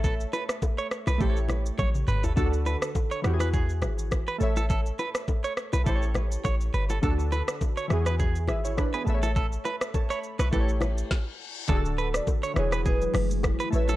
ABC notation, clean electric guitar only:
X:1
M:4/4
L:1/16
Q:"Swing 16ths" 1/4=103
K:A
V:1 name="Clean electric guitar"
A z B z2 c z B A2 z2 c z B A | A z B z2 c z B G2 z3 B z A | A z B z2 c z B A2 z2 c z B A | A z B z2 c z B G2 z3 B z A |
A z B z2 c z B A2 z6 | A z B z2 c z B G2 z3 B z A |]